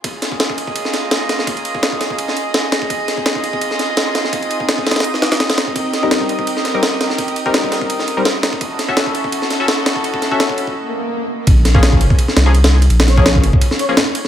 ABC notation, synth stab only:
X:1
M:4/4
L:1/16
Q:"Swing 16ths" 1/4=168
K:Bbdor
V:1 name="Synth stab"
z16 | z16 | z16 | z16 |
z3 [G,CEB]8 [G,CEB] z4 | z3 [G,CEB]8 [G,CEB] z4 | z3 [D_G=A_f]8 [DGAf] z4 | z3 [D_G=A_f]4- [DGAf] z8 |
z3 [F,B,DA]8 [F,B,DA] z4 | z3 [F,B,DA]8 [F,B,DA] z4 |]